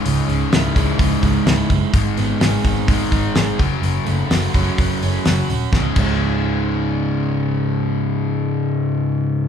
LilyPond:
<<
  \new Staff \with { instrumentName = "Overdriven electric guitar" } { \clef bass \time 4/4 \key cis \minor \tempo 4 = 127 cis,8 cis8 e'8 gis8 gis,8 gis8 e'8 gis8 | gis,8 b8 gis'8 dis'8 gis8 dis'8 gis'8 fis,8 | fis,8 a8 fis'8 cis'8 fis8 cis'8 fis'8 cis'8 | <cis, gis, cis>8 <cis, gis, cis>2.~ <cis, gis, cis>8~ |
<cis, gis, cis>1 | }
  \new Staff \with { instrumentName = "Overdriven electric guitar" } { \clef bass \time 4/4 \key cis \minor <cis, gis, cis>4. <cis, gis, cis>2 r8 | <gis, dis gis>2 <gis, dis gis>4. <fis, cis fis>8~ | <fis, cis fis>4. <fis, cis fis>2 r8 | <cis, gis, cis>8 <cis, gis, cis>2.~ <cis, gis, cis>8~ |
<cis, gis, cis>1 | }
  \new Staff \with { instrumentName = "Picked electric bass" } { \clef bass \time 4/4 \key cis \minor cis,,8 cis,,8 cis,,8 cis,,8 cis,,8 cis,,8 cis,,8 fis,,8 | gis,,8 gis,,8 gis,,8 gis,,8 gis,,8 gis,,8 gis,,8 fis,,8 | fis,,8 fis,,8 fis,,8 fis,,8 fis,,8 fis,,8 fis,,8 dis,,8 | cis,,8 cis,,2.~ cis,,8~ |
cis,,1 | }
  \new DrumStaff \with { instrumentName = "Drums" } \drummode { \time 4/4 hho8 hho8 <hho sn>8 <hho bd>8 <hho bd>8 <hho bd>8 <hho sn>8 <hho bd>8 | <hho bd>8 hho8 <hho sn>8 <hho bd>8 <hho bd>8 <hho bd>8 <hho sn>8 <hho bd>8 | hho8 hho8 <hho sn>8 <hho bd>8 <hho bd>8 hho8 <hho sn>8 hho8 | <bd sn>8 <cymc bd>8 r4 r4 r4 |
r4 r4 r4 r4 | }
>>